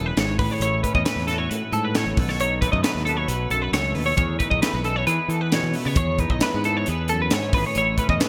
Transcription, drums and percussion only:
0.17 snare, closed hi-hat
0.39 kick, open hi-hat
0.61 closed hi-hat
0.84 kick, closed hi-hat
0.95 kick
1.06 snare, closed hi-hat
1.18 snare
1.28 snare, closed hi-hat
1.51 closed hi-hat
1.73 closed hi-hat
1.95 snare, closed hi-hat
2.17 kick, open hi-hat
2.29 snare
2.40 closed hi-hat
2.62 kick, closed hi-hat
2.73 kick
2.84 snare, closed hi-hat
2.96 snare
3.07 closed hi-hat
3.28 closed hi-hat
3.50 closed hi-hat
3.73 snare, closed hi-hat
3.95 open hi-hat
4.17 kick, closed hi-hat
4.40 kick, closed hi-hat
4.51 kick
4.62 snare, closed hi-hat
4.84 closed hi-hat
5.07 closed hi-hat
5.30 closed hi-hat
5.52 snare, closed hi-hat
5.73 open hi-hat
5.96 kick, closed hi-hat
6.18 kick, closed hi-hat
6.30 kick
6.41 snare, closed hi-hat
6.64 closed hi-hat
6.86 closed hi-hat
7.08 closed hi-hat
7.30 snare, closed hi-hat
7.53 kick, open hi-hat
7.75 closed hi-hat
7.98 kick, closed hi-hat
8.09 kick
8.20 snare, closed hi-hat

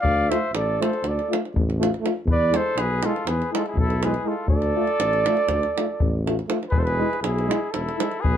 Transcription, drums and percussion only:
0.04 davul low
0.32 davul high
0.55 davul high
0.82 davul high
0.93 davul high
1.04 davul high
1.19 davul high
1.33 davul high
1.45 davul high
1.56 davul low
1.70 davul high
1.83 davul high
1.94 davul high
2.06 davul high
2.28 davul low
2.54 davul high
2.78 davul high
3.03 davul high
3.16 davul high
3.27 davul high
3.42 davul high
3.55 davul high
3.66 davul high
3.77 davul low
3.90 davul high
4.03 davul high
4.14 davul high
4.48 davul low
4.62 davul high
4.87 davul high
5.00 davul high
5.13 davul high
5.26 davul high
5.37 davul high
5.49 davul high, davul low
5.63 davul high
5.78 davul high
6.00 davul low
6.27 davul high
6.39 davul high
6.50 davul high
6.63 davul high
6.72 davul low
6.87 davul high
7.13 davul high
7.24 davul high
7.38 davul high
7.51 davul high
7.74 davul high
7.89 davul high
8.00 davul high
8.12 davul high
8.24 davul low

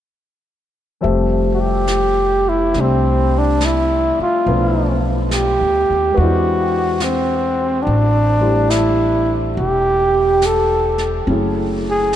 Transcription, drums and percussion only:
1.03 brush sweep
1.87 snare, hi-hat pedal
2.74 brush sweep, snare
3.60 snare, hi-hat pedal
4.45 brush sweep
5.31 snare, hi-hat pedal
6.14 brush sweep
7.00 snare, hi-hat pedal
7.85 brush sweep
8.70 snare, hi-hat pedal
9.55 brush sweep
10.42 snare, hi-hat pedal
10.98 snare
11.27 brush sweep

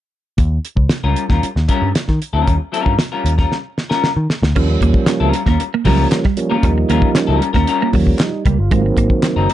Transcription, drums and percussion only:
0.38 kick, closed hi-hat
0.65 closed hi-hat
0.77 kick
0.89 snare, closed hi-hat
1.16 closed hi-hat
1.29 kick, snare
1.43 closed hi-hat
1.56 snare
1.69 kick, closed hi-hat
1.95 snare, closed hi-hat
2.08 kick, snare
2.22 closed hi-hat
2.47 kick, closed hi-hat
2.74 closed hi-hat
2.86 kick
2.99 snare, closed hi-hat
3.26 closed hi-hat
3.38 kick, snare
3.52 snare
3.78 snare
3.91 snare
4.04 snare
4.30 snare
4.43 snare
4.56 kick, crash
4.81 kick, closed hi-hat
4.94 kick
5.06 snare, clap, closed hi-hat
5.33 closed hi-hat
5.46 kick, snare
5.60 closed hi-hat
5.85 kick, open hi-hat
6.12 snare, clap, closed hi-hat
6.23 kick, snare
6.37 closed hi-hat
6.63 kick, closed hi-hat
6.90 closed hi-hat
7.02 kick
7.15 snare, clap, closed hi-hat
7.42 closed hi-hat
7.54 kick, snare
7.67 closed hi-hat
7.93 kick, open hi-hat
8.07 kick
8.19 snare, clap, closed hi-hat
8.46 kick, closed hi-hat
8.71 kick, closed hi-hat
8.97 kick, closed hi-hat
9.10 kick
9.23 snare, clap, closed hi-hat
9.50 closed hi-hat

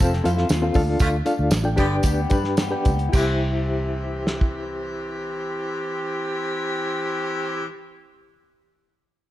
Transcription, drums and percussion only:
0.01 kick, closed hi-hat
0.13 snare
0.25 closed hi-hat, tambourine, muted conga
0.38 snare
0.49 snare, closed hi-hat, tambourine, high conga
0.74 kick, open hi-hat, tambourine, high conga
1.00 kick, closed hi-hat, tambourine, muted conga
1.26 closed hi-hat, tambourine, muted conga
1.51 snare, closed hi-hat, tambourine, high conga
1.78 kick, closed hi-hat, tambourine
2.03 kick, closed hi-hat, tambourine, muted conga
2.30 kick, closed hi-hat, tambourine, muted conga, low conga
2.44 snare
2.57 snare, closed hi-hat, tambourine, high conga
2.85 kick, closed hi-hat, tambourine, high conga
2.99 closed hi-hat
3.13 kick, crash, tambourine, muted conga
4.27 snare
4.41 kick

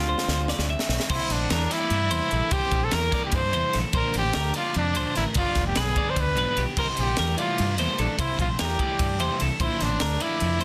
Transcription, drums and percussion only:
0.18 snare
0.28 snare
0.48 snare
0.59 snare
0.79 snare
0.89 snare
1.00 snare
1.09 kick, crash
1.30 snare, ride
1.50 snare, ride
1.71 snare, ride
1.90 ride
2.11 ride
2.31 ride
2.51 kick, ride
2.71 kick, ride
2.91 snare, ride
3.12 kick, snare, ride
3.32 kick, ride
3.53 ride
3.73 snare, ride
3.93 kick, ride
4.14 ride
4.33 snare, ride
4.54 ride
4.74 ride
4.95 ride
5.15 snare, ride
5.34 kick, ride
5.55 kick, snare, ride
5.75 snare, ride
5.96 kick, ride
6.16 kick, ride
6.37 ride
6.57 ride
6.77 kick, crash
6.97 ride
7.17 snare, ride
7.38 ride
7.58 ride
7.78 ride
7.98 ride
8.19 kick, ride
8.39 kick, ride
8.59 snare, ride
8.79 kick, ride
8.99 kick, ride
9.20 ride
9.40 ride
9.60 kick, ride
9.80 snare, ride
10.00 snare, ride
10.20 ride
10.40 ride
10.61 ride

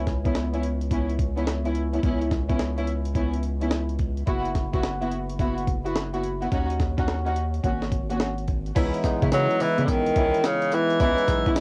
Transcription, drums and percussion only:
0.07 kick, snare, closed hi-hat
0.25 kick, closed hi-hat
0.35 snare, closed hi-hat
0.54 closed hi-hat
0.63 closed hi-hat
0.81 closed hi-hat
0.91 kick, closed hi-hat
1.09 closed hi-hat
1.19 kick, closed hi-hat
1.37 closed hi-hat
1.47 snare, closed hi-hat
1.65 closed hi-hat
1.75 closed hi-hat
1.93 closed hi-hat
2.03 kick, closed hi-hat
2.21 closed hi-hat
2.31 kick, snare, closed hi-hat
2.49 kick, closed hi-hat
2.59 snare, closed hi-hat
2.78 closed hi-hat
2.87 closed hi-hat
3.05 closed hi-hat
3.15 kick, closed hi-hat
3.33 closed hi-hat
3.43 closed hi-hat
3.61 closed hi-hat
3.71 snare, closed hi-hat
3.89 closed hi-hat
3.99 kick, closed hi-hat
4.17 closed hi-hat
4.27 kick, closed hi-hat
4.45 closed hi-hat
4.55 kick, snare, closed hi-hat
4.74 kick, closed hi-hat
4.83 snare, closed hi-hat
5.02 closed hi-hat
5.12 closed hi-hat
5.30 closed hi-hat
5.39 kick, closed hi-hat
5.58 closed hi-hat
5.67 kick, closed hi-hat
5.86 closed hi-hat
5.96 snare, closed hi-hat
6.14 closed hi-hat
6.23 closed hi-hat
6.42 closed hi-hat
6.52 kick, closed hi-hat
6.70 closed hi-hat
6.80 kick, snare, closed hi-hat
6.98 kick, closed hi-hat
7.08 snare, closed hi-hat
7.26 closed hi-hat
7.36 closed hi-hat
7.54 closed hi-hat
7.64 kick, closed hi-hat
7.82 snare, closed hi-hat
7.92 kick, closed hi-hat
8.10 closed hi-hat
8.20 snare, closed hi-hat
8.38 closed hi-hat
8.48 kick, closed hi-hat
8.66 closed hi-hat
8.76 kick, closed hi-hat, crash, tambourine
8.94 closed hi-hat
9.04 kick, snare, closed hi-hat, tambourine
9.22 kick, closed hi-hat
9.32 snare, closed hi-hat, tambourine
9.50 closed hi-hat
9.60 open hi-hat, tambourine
9.78 closed hi-hat
9.88 kick, closed hi-hat, tambourine
10.06 closed hi-hat
10.16 kick, closed hi-hat
10.34 closed hi-hat
10.44 snare, closed hi-hat, tambourine
10.62 closed hi-hat
10.72 closed hi-hat, tambourine
10.90 closed hi-hat
11.00 kick, closed hi-hat, tambourine
11.18 closed hi-hat
11.28 kick, snare, closed hi-hat, tambourine
11.46 kick, closed hi-hat
11.56 snare, closed hi-hat, tambourine

